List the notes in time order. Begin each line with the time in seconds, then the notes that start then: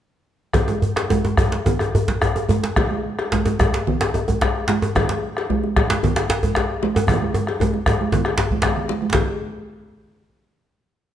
0.53 bombo rim, bombo low, cowbell, djembe slap, djembe tone, low conga, djembe bass
0.68 djembe tone, high conga
0.82 djembe bass
0.96 bombo rim, cowbell, djembe slap
1.10 djembe slap, high conga, djembe tone, djembe bass
1.25 djembe slap, djembe tone
1.37 bombo rim, bombo low, cowbell, djembe slap, djembe bass
1.52 djembe slap, high conga
1.66 djembe tone, low conga, djembe bass
1.79 bombo rim, cowbell, djembe tone
1.95 djembe tone, djembe bass
2.08 bombo low, djembe slap, high conga
2.21 bombo rim, cowbell, djembe slap, djembe tone, djembe bass
2.36 djembe tone
2.49 bombo rim, djembe slap, high conga, djembe bass
2.63 bombo rim, djembe slap, high conga
2.76 bombo rim, bombo low, cowbell, djembe slap, djembe tone, low conga, djembe bass
2.91 high conga
3.19 bombo rim, cowbell
3.32 djembe slap, high conga
3.34 djembe slap, djembe bass
3.46 djembe slap, djembe tone
3.59 bombo rim, bombo low, cowbell, djembe slap, djembe tone
3.74 djembe slap
3.87 low conga, djembe bass
4.01 bombo rim, cowbell, djembe slap
4.14 djembe tone
4.28 bombo low, djembe tone, high conga
4.41 bombo rim, cowbell, djembe slap, djembe bass
4.68 bombo rim, djembe slap, high conga
4.82 bombo rim, djembe tone, high conga
4.95 bombo rim, bombo low, cowbell, djembe slap, djembe tone, djembe bass, low conga
5.09 djembe slap, high conga
5.37 bombo rim, cowbell
5.50 djembe slap, high conga, djembe bass
5.63 djembe slap, djembe tone
5.76 bombo rim, bombo low, cowbell, djembe slap
5.90 djembe slap, high conga
6.03 djembe tone, djembe bass, low conga
6.16 bombo rim, cowbell, djembe slap
6.29 djembe slap, djembe tone
6.42 bombo low, djembe tone, high conga
6.55 bombo rim, cowbell, djembe slap, djembe bass
6.82 bombo rim, djembe slap, high conga
6.95 bombo rim, djembe tone, high conga
7.08 bombo rim, bombo low, cowbell, djembe tone, djembe bass, low conga
7.22 djembe slap, high conga
7.34 bombo rim, djembe slap, djembe tone
7.47 bombo rim, cowbell, djembe slap, high conga
7.60 djembe slap, djembe tone, high conga, djembe bass
7.73 bombo rim, djembe tone, high conga
7.86 bombo rim, bombo low, cowbell, djembe slap, djembe tone, high conga
8.01 high conga
8.12 bombo rim, djembe slap, djembe tone, djembe bass, low conga
8.25 bombo rim, cowbell, djembe slap
8.38 bombo rim, djembe slap, djembe tone
8.50 bombo low, high conga
8.62 bombo rim, cowbell, djembe slap
8.64 djembe slap, djembe bass, low conga
8.76 bombo rim, djembe slap, low conga
8.88 bombo rim, djembe slap, high conga
9.01 bombo rim, high conga
9.13 bombo low, cowbell, djembe slap, low conga, djembe bass